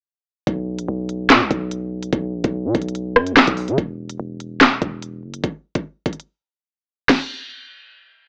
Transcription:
0.47 B1, kick, closed hi-hat
0.79 A#1, closed hi-hat
0.88 B1
1.09 closed hi-hat
1.30 B2, snare, clap, closed hi-hat
1.41 B1
1.51 B1, kick, closed hi-hat
1.71 closed hi-hat
2.03 closed hi-hat
2.13 B1, kick, closed hi-hat
2.33 A#1
2.44 B1, kick, closed hi-hat
2.65 B2
2.75 B1, kick, closed hi-hat
2.82 closed hi-hat
2.89 closed hi-hat
2.95 closed hi-hat
3.16 F#2, cross-stick
3.27 closed hi-hat
3.32 B1
3.37 snare, clap
3.47 B1, kick, closed hi-hat
3.57 open hi-hat
3.68 D3, closed hi-hat
3.78 E1, kick, closed hi-hat
4.10 closed hi-hat
4.20 E1
4.40 closed hi-hat
4.61 snare, clap, closed hi-hat
4.82 E1, kick, closed hi-hat
5.02 closed hi-hat
5.23 F#1
5.34 closed hi-hat
5.44 kick, closed hi-hat
5.75 kick, closed hi-hat
6.06 kick, closed hi-hat
6.13 closed hi-hat
6.20 closed hi-hat
7.09 kick, snare, crash

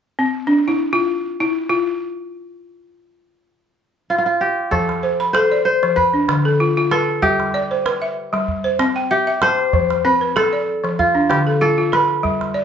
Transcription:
0.19 C4
0.47 D4
0.68 E4
0.93 F4
1.40 E4
1.69 F4
4.10 F4
4.18 F4
4.26 F4
4.41 G4
4.71 F3 A4, calabash thump
4.89 calabash click
5.03 C5
5.20 B5, calabash click
5.33 A4 C5, calabash click
5.51 D5
5.65 C5
5.83 F3, calabash click
5.96 B4, calabash thump
6.14 D4
6.29 D3, calabash click
6.45 A4
6.60 F4
6.77 F4
6.91 A4 B4, calabash click
7.22 G3 G4, calabash thump
7.40 calabash click
7.54 D5
7.71 C5, calabash click
7.86 B4, calabash click
8.02 E5
8.33 G3, calabash click
8.48 calabash thump
8.64 C5
8.79 C4, calabash click
8.96 G5
9.11 G4 E5
9.27 E5
9.42 C5 A5, calabash click
9.73 F3, calabash thump
9.90 calabash click
10.05 C4 B4
10.21 B4, calabash click
10.36 A4, calabash click
10.53 D5
10.84 F3, calabash click
10.99 F4, calabash thump
11.15 D4
11.29 D3 G4, calabash click
11.47 A4
11.61 F4 A4
11.78 F4
11.92 B4, calabash click
12.23 G3, calabash thump
12.41 calabash click
12.54 D5

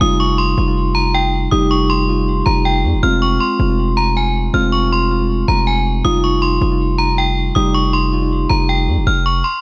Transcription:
0.00 F1 G3 D#4 F4 D#6
0.20 C#6
0.38 C6
0.58 F1
0.67 G3 D#4 F4
0.95 A#5
1.14 G5
1.51 F1 G3 D#4 G4 D#6
1.71 C#6
1.90 C6
2.08 G3 D#4 F4
2.18 G3 D#4 F4
2.46 F1 A#5
2.65 G5
2.84 F2
2.93 F1
3.02 F1 G#3 C4 F4 F6
3.22 C#6
3.40 C6
3.60 F1
3.68 G#3 C4 F4
3.97 A#5
4.17 G#5
4.53 F1 G#3 C4 F4 F6
4.72 C#6
4.92 C6
5.10 G#3 C4 F4
5.19 G#3 C4 F4
5.48 F1 A#5
5.67 G#5
6.04 F1 G3 D#4 F4 D#6
6.24 C#6
6.42 C6
6.61 F1
6.71 G3 D#4 F4
6.98 A#5
7.18 G5
7.55 F1 G3 D#4 G4 D#6
7.74 C#6
7.93 C6
8.12 G3 D#4 F4
8.21 G3 D#4 F4
8.49 F1 A#5
8.69 G5
8.88 F2
8.97 F1
9.07 F1 F6
9.26 C#6
9.44 C6

